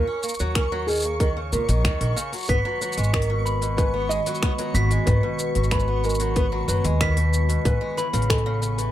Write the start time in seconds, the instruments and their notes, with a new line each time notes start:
Already playing: felt piano A#4, synth texture C#6
0.07 steel-string acoustic guitar C#4
0.23 steel-string acoustic guitar A#3, shaker
0.29 shaker
0.34 shaker
0.39 upright bass D#2, steel-string acoustic guitar F#3, shaker
0.55 steel-string acoustic guitar C#4, felt piano A#4, finger snap, kick, open hi-hat
0.72 steel-string acoustic guitar F#3
0.87 steel-string acoustic guitar D#3, felt piano G#4, shaker
0.90 shaker
0.92 shaker
0.95 shaker
0.97 shaker
1.00 shaker
1.02 open hi-hat, shaker
1.04 steel-string acoustic guitar A#3, shaker
1.20 steel-string acoustic guitar D#3, felt piano A#4, kick, open hi-hat, shaker
1.37 steel-string acoustic guitar C#3
1.52 upright bass C#2, steel-string acoustic guitar A#2, felt piano A#4, shaker
1.68 upright bass A#1, steel-string acoustic guitar D#3, open hi-hat, shaker
1.85 steel-string acoustic guitar D#3, finger snap, kick, open hi-hat, shaker
2.01 upright bass A#1, steel-string acoustic guitar D#3, open hi-hat
2.16 steel-string acoustic guitar C#3, shaker
2.32 steel-string acoustic guitar F#3, open hi-hat, shaker
2.36 shaker
2.38 shaker
2.40 shaker
2.43 shaker
2.45 shaker
2.47 upright bass G#1, ambient pad D#3 G#3 B3 F#4, steel-string acoustic guitar B3, felt piano B4, glockenspiel B6, kick, open hi-hat, shaker
2.65 steel-string acoustic guitar F#3
2.81 steel-string acoustic guitar F#3, open hi-hat, shaker
2.93 shaker
2.97 upright bass G#1, steel-string acoustic guitar G#3, open hi-hat, shaker
3.04 shaker
3.13 steel-string acoustic guitar D#3, felt piano A#4, finger snap, kick, shaker
3.22 open hi-hat
3.30 steel-string acoustic guitar B2
3.46 glockenspiel B5, shaker
3.62 steel-string acoustic guitar B2, open hi-hat, shaker
3.77 steel-string acoustic guitar G#2, felt piano B4, kick, open hi-hat, shaker
3.94 steel-string acoustic guitar B3
4.09 steel-string acoustic guitar G#3, felt piano D#5, shaker
4.26 steel-string acoustic guitar F#3, open hi-hat, shaker
4.35 shaker
4.43 steel-string acoustic guitar B3, finger snap, kick, open hi-hat
4.59 steel-string acoustic guitar F#3, open hi-hat
4.74 upright bass G#1, steel-string acoustic guitar F#3, glockenspiel B6, shaker
4.90 steel-string acoustic guitar G#3, open hi-hat, shaker
5.06 upright bass G#1, steel-string acoustic guitar D#3, felt piano B4, kick, open hi-hat, shaker
5.23 steel-string acoustic guitar B2
5.39 open hi-hat, shaker
5.55 upright bass G#1, steel-string acoustic guitar B2, open hi-hat, shaker
5.64 shaker
5.71 steel-string acoustic guitar G#2, felt piano B4, glockenspiel B5, finger snap, kick, open hi-hat, shaker
5.80 shaker
5.88 steel-string acoustic guitar B3
6.04 steel-string acoustic guitar G#3, felt piano A#4, shaker
6.10 shaker
6.15 shaker
6.20 steel-string acoustic guitar F#3, open hi-hat, shaker
6.36 steel-string acoustic guitar B3, felt piano B4, kick, open hi-hat, shaker
6.52 steel-string acoustic guitar F#3
6.68 upright bass F#1, steel-string acoustic guitar F#3, felt piano B4, shaker
6.84 upright bass D#2, steel-string acoustic guitar G#3, open hi-hat, shaker
7.01 steel-string acoustic guitar D#3, glockenspiel B6, finger snap, kick, open hi-hat, shaker
7.17 steel-string acoustic guitar B2, open hi-hat
7.34 shaker
7.49 steel-string acoustic guitar B2, open hi-hat, shaker
7.65 upright bass A1, steel-string acoustic guitar G#2, ambient pad C#3 B3 G#5, felt piano B4, kick, open hi-hat, shaker
7.81 steel-string acoustic guitar G#3
7.97 steel-string acoustic guitar E3, glockenspiel B5, open hi-hat, shaker
8.13 upright bass A1, steel-string acoustic guitar C#3, open hi-hat, shaker
8.22 open hi-hat
8.30 steel-string acoustic guitar G#3, felt piano A4, finger snap, kick, open hi-hat, shaker
8.38 open hi-hat
8.46 steel-string acoustic guitar C#3
8.62 steel-string acoustic guitar C#3, shaker
8.78 steel-string acoustic guitar E3, open hi-hat, shaker